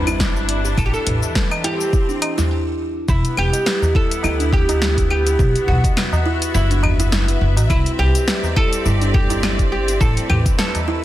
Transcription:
Already playing: G1 C3 G3 D4 E4 B4
0.07 E4, tabla na, cabasa, claves
0.20 kick, snare, cabasa
0.36 tabla tin, cabasa
0.49 closed hi-hat
0.65 G4, cabasa
0.77 A1 A2 E4 A4, kick, cabasa, claves
0.86 G4
0.94 A4, cabasa
1.06 A1 B4, closed hi-hat, tabla ge
1.23 E3, tabla tin, cabasa
1.35 B4, kick, snare, cabasa
1.51 tabla na, cabasa, claves
1.64 E4 G4, closed hi-hat
1.70 C4
1.81 cabasa
1.93 E4, kick, cabasa
2.09 D4, cabasa
2.22 closed hi-hat, tabla na, tabla tin, claves
2.38 E4, snare, tabla ge, cabasa
3.08 E1 E4, kick, cabasa
3.23 B3, closed hi-hat, cabasa
3.37 E1 G4 B4, claves
3.44 E4
3.53 closed hi-hat, tabla tin, cabasa
3.66 G4 B4, snare, cabasa
3.82 tabla na, tabla ge, cabasa
3.95 E4 A4, kick
4.11 closed hi-hat, cabasa
4.23 D2 E4, tabla na, cabasa, claves
4.40 D4, closed hi-hat, cabasa
4.52 G4, kick, tabla ge
4.69 E4, closed hi-hat, tabla na, cabasa
4.82 snare, cabasa
4.97 kick, closed hi-hat, tabla tin, cabasa
5.10 G4, claves
5.26 G4, closed hi-hat, cabasa
5.39 B1 E4, kick, cabasa
5.47 F#4
5.55 closed hi-hat, cabasa
5.65 B1 F#4 B4 E5, tabla ge
5.84 kick, closed hi-hat, tabla tin, cabasa
5.97 B4, snare, cabasa, claves
6.12 tabla na, tabla ge, cabasa
6.23 E4 B4
6.42 closed hi-hat, cabasa
6.54 F#1 E4, cabasa
6.71 D4, closed hi-hat, cabasa
6.83 tabla na, tabla tin, tabla ge, claves
6.99 E4, closed hi-hat, cabasa
7.12 snare, cabasa
7.28 closed hi-hat, cabasa
7.41 F#1
7.57 A1 F#4, closed hi-hat, tabla na, cabasa
7.70 C2 C4 E4, kick, cabasa, claves
7.86 closed hi-hat, cabasa
7.99 C2 G4 B4
8.14 closed hi-hat, tabla tin, cabasa
8.28 B4 D5, snare, cabasa
8.43 tabla na, tabla ge, cabasa
8.56 E4 A4, kick, claves
8.73 closed hi-hat, cabasa
8.85 G1 E4, tabla na, cabasa
9.02 D4, closed hi-hat, cabasa
9.14 G4, kick, tabla ge
9.30 E4, closed hi-hat, tabla na, cabasa
9.43 snare, cabasa, claves
9.59 kick, closed hi-hat, tabla tin, cabasa
9.72 G4
9.88 G4, closed hi-hat, cabasa
10.00 A1 A3 E4 A4, kick, cabasa
10.10 E4
10.17 closed hi-hat, cabasa
10.25 B4
10.29 A1 G4 B4, tabla ge, claves
10.46 kick, closed hi-hat, tabla tin, cabasa
10.59 A4 B4, snare, cabasa
10.75 closed hi-hat, tabla na, tabla ge, cabasa
10.88 E4

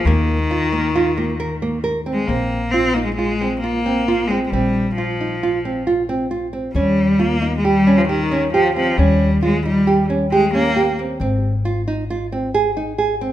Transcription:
0.05 D#2 D#3 A#3
0.51 F4
0.72 A#3
0.95 F4
1.17 A#3
1.40 A#4
1.62 A#3
1.84 A#4
2.06 C4
2.13 G#3
2.28 A#1 A#3 C4
2.71 C4 F4
2.94 A#3 D#4
3.05 G#3
3.15 G#3 F4
3.41 C4
3.60 A#3 F4
3.86 C4
4.08 F4
4.28 G#3 C4
4.46 G#3
4.51 A#1 G3 C4
4.97 F3 F4
5.21 D#4
5.43 F4
5.65 C4
5.87 F4
6.09 C4
6.31 F4
6.53 C4
6.75 D#2 G3 C#4
7.19 A#3 F4
7.42 D#4
7.57 G#3
7.65 G3 G4
7.87 C#4
7.98 F3
8.09 D#3 G4
8.32 C#4
8.53 F3 G4
8.76 F3 C4
8.97 D#2 G3 C#4
9.43 G#3 F4
9.65 G3 D#4
9.87 G4
10.10 C#4
10.31 G#3 G4
10.54 A#3 C#4
10.76 G4
10.99 C4
11.20 G#1 C4
11.65 F4
11.88 D#4
12.10 F4
12.32 C4
12.54 G#4
12.77 D#4
12.98 G#4
13.21 C4

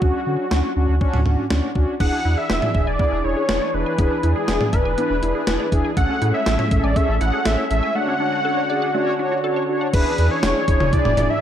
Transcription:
Already playing: F#4
0.02 D2 C#4 D4 F#4, kick
0.27 D3 C#4 D4 F#4
0.51 D2 C#4 D4 F#4, snare
0.76 D2 C#4 D4 F#4
0.89 D2
1.01 C#4 D4 F#4, kick
1.13 D2, mid tom
1.26 D2 C#4 D4 F#4, mid tom
1.50 D2 C#4 D4 F#4, snare
1.75 D2 C#4 D4 F#4, kick
2.00 E1 E3 B3 D4 E4 G#4 F#5, kick, crash
2.13 D4
2.25 E2 D4 E4 G#4
2.37 G#4 E5
2.50 E1 D4 E4 G#4 B4, snare
2.62 D5, mid tom
2.75 E1 D4 E4 G#4 E5, kick
2.87 E1 D5 G#5
2.99 B3 D4 E4 G#4, kick
3.12 E1 D4
3.24 E1 D4 E4 G#4 C#5
3.37 G#4
3.49 E1 D4 E4 G#4 B4, snare
3.61 D5
3.74 E1 D4 E4 G#4 B4
3.86 G#5
3.98 E1 B3 D4 E4 G#4, kick, closed hi-hat
4.11 D4
4.23 E2 D4 E4 G#4, closed hi-hat
4.36 G#4
4.48 E1 D4 E4 G#4 B4, snare, closed hi-hat
4.61 D5, mid tom
4.73 E1 D4 E4 G#4 B4 E5, kick, closed hi-hat
4.85 E1 G#5
4.98 B3 D4 E4 B4, closed hi-hat
5.10 E1 D4
5.22 E1 D4 E4 G#4, closed hi-hat
5.35 G#4
5.47 E1 D4 E4 G#4 B4, snare, closed hi-hat
5.60 D5
5.72 E1 D4 E4 G#4, kick, closed hi-hat
5.85 G#5
5.97 A1 G#3 A3 C#4 G#4 A4 F#5, kick, closed hi-hat
6.09 C#4
6.22 A2 C#4 E4 G#4 A4, closed hi-hat
6.34 G#4 E5
6.46 A1 C#4 G#4 A4, snare, closed hi-hat
6.59 C#5, mid tom
6.71 A1 C#4 G#4 A4 E5, kick, closed hi-hat
6.84 A1 D5 G#5
6.96 A3 C#4 G#4 A4 E5, kick, closed hi-hat
7.08 A1 C#4
7.21 A1 C#4 E4 G#4 A4 F#5, closed hi-hat
7.33 G#4
7.45 A1 C#4 G#4 A4 E5, snare, closed hi-hat
7.58 C#5
7.70 A1 C#4 G#4 A4 E5, closed hi-hat
7.83 G#5
7.95 D3 A3 D4 F#4 C#5 F#5
8.08 C#4
8.20 D4 F#4 C#5
8.32 F#4
8.45 D4 F#4 A4 C#5
8.57 C#5
8.70 D4 F#4 G#4 D5
8.82 F#5
8.94 A3 D4 F#4 C#5
9.07 C#4
9.19 D4 F#4 C#5
9.32 F#4
9.44 D4 F#4 A4 C#5
9.56 C#5
9.69 D4 F#4 C#5
9.81 F#5
9.93 E1 E3 D4 E4 G#4 B4, kick, closed hi-hat, crash
10.18 E2 D4 E4 G#4, closed hi-hat
10.31 C#5
10.43 E1 D4 E4 G#4, snare, closed hi-hat
10.68 E1 D4 E4 G#4, kick, closed hi-hat
10.80 E1, mid tom
10.93 D4 E4 G#4 D5, kick, closed hi-hat
11.05 E1, mid tom
11.17 E1 D4 E4 G#4, closed hi-hat, mid tom, cowbell
11.30 E5

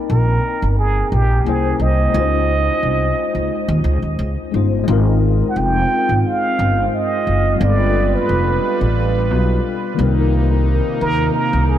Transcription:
Already playing: A#3 C4 D#4 A#4 D#5 G5
0.10 A#1 A#4
0.62 G1
0.78 G#4
1.12 A#1 G4
1.44 C2 A#3 C#4 E4 G#4 G5
1.49 C5
1.80 C2 D#5
2.10 G#3 C#4
2.14 C#2 D#4 F4
2.20 C5
2.83 C2
3.35 C#2
3.68 D#2
3.84 C#2
4.02 D#2
4.19 C#2
4.51 G1 G#3 C#4 D#4 F4
4.56 C5
4.83 G#3 C4 F4
4.88 G#1 D#4 F4
4.92 A#4
5.49 F#5
5.56 F1 G5
6.09 G#1
6.27 F5
6.59 G1
6.95 D#5
7.27 F#1
7.55 G3 B3 B4
7.61 G1 D4 F4 D5
7.65 A4
8.15 B4
8.29 F1
8.81 A1
9.31 B1
9.94 C3 D#3 A#3 D#4
9.99 C2 C4 D#4
10.03 A#4
11.01 D#2 A#4
11.34 A#4
11.53 C2
11.69 G#4

